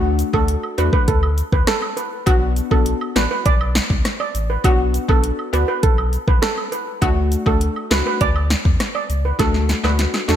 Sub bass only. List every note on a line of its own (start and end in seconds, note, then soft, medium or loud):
0.00 0.23 D2 loud
0.34 0.56 D2 loud
0.78 0.90 E2 medium
1.08 1.42 D2 loud
1.52 1.64 D2 medium
2.27 2.61 B1 loud
2.71 2.94 B1 loud
3.16 3.27 A1 loud
3.46 3.80 B1 loud
3.90 4.01 C#2 loud
4.35 4.58 A1 medium
4.64 4.99 B1 loud
5.09 5.32 B1 loud
5.53 5.65 D2 loud
5.83 6.17 B1 loud
6.28 6.39 B1 medium
7.02 7.36 D2 loud
7.46 7.69 D2 medium
7.91 8.02 C#2 medium
8.21 8.55 D2 loud
8.65 8.77 E2 medium
9.10 9.33 C#2 medium
9.39 9.74 D2 loud
9.84 10.07 D2 loud
10.28 10.36 E2 loud